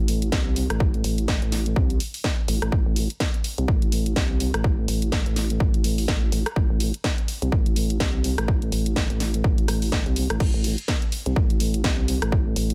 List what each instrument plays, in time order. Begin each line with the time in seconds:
Already playing: wobble bass A1
0.08 open hi-hat
0.22 closed hi-hat
0.32 wobble bass C2, kick, snare
0.56 open hi-hat
0.70 wobble bass A1, cross-stick, closed hi-hat
0.80 kick
0.94 closed hi-hat
1.04 wobble bass A1, open hi-hat
1.18 closed hi-hat
1.28 kick, snare
1.42 wobble bass A1, closed hi-hat
1.52 snare, open hi-hat
1.66 closed hi-hat
1.76 wobble bass C2, kick
1.90 closed hi-hat
2.00 open hi-hat
2.14 open hi-hat
2.24 kick, snare
2.48 wobble bass A1, open hi-hat
2.62 wobble bass A1, cross-stick, closed hi-hat
2.72 wobble bass A1, kick
2.86 wobble bass A1
2.96 open hi-hat
3.10 closed hi-hat
3.20 kick, snare
3.34 closed hi-hat
3.44 open hi-hat
3.58 wobble bass C2, closed hi-hat
3.68 wobble bass A1, kick
3.82 closed hi-hat
3.92 open hi-hat
4.06 closed hi-hat
4.16 wobble bass C2, kick, snare
4.40 open hi-hat
4.54 wobble bass A1, cross-stick, closed hi-hat
4.64 kick
4.88 wobble bass A1, open hi-hat
5.02 closed hi-hat
5.12 kick, snare
5.26 wobble bass A1, closed hi-hat
5.36 snare, open hi-hat
5.50 closed hi-hat
5.60 wobble bass A1, kick
5.74 closed hi-hat
5.84 open hi-hat
5.98 open hi-hat
6.08 wobble bass A1, kick, snare
6.32 wobble bass A1, open hi-hat
6.46 cross-stick, closed hi-hat
6.56 wobble bass A1, kick
6.70 wobble bass A1
6.80 open hi-hat
6.94 closed hi-hat
7.04 kick, snare
7.18 closed hi-hat
7.28 open hi-hat
7.42 wobble bass C2, closed hi-hat
7.52 wobble bass A1, kick
7.66 closed hi-hat
7.76 open hi-hat
7.90 closed hi-hat
8.00 wobble bass C2, kick, snare
8.24 open hi-hat
8.38 wobble bass A1, cross-stick, closed hi-hat
8.48 kick
8.62 closed hi-hat
8.72 wobble bass A1, open hi-hat
8.86 closed hi-hat
8.96 kick, snare
9.10 wobble bass A1, closed hi-hat
9.20 snare, open hi-hat
9.34 closed hi-hat
9.44 wobble bass A1, kick
9.58 closed hi-hat
9.68 wobble bass A1, cross-stick, open hi-hat
9.82 open hi-hat
9.92 kick, snare
10.06 wobble bass C2, closed hi-hat
10.16 open hi-hat
10.30 wobble bass A1, cross-stick, closed hi-hat
10.40 wobble bass A1, kick, crash
10.54 wobble bass A1
10.64 open hi-hat
10.78 closed hi-hat
10.88 kick, snare
11.02 closed hi-hat
11.12 open hi-hat
11.26 wobble bass C2, closed hi-hat
11.36 wobble bass A1, kick
11.50 closed hi-hat
11.60 open hi-hat
11.74 closed hi-hat
11.84 wobble bass C2, kick, snare
12.08 open hi-hat
12.22 wobble bass A1, cross-stick, closed hi-hat
12.32 kick
12.56 wobble bass A1, open hi-hat
12.70 closed hi-hat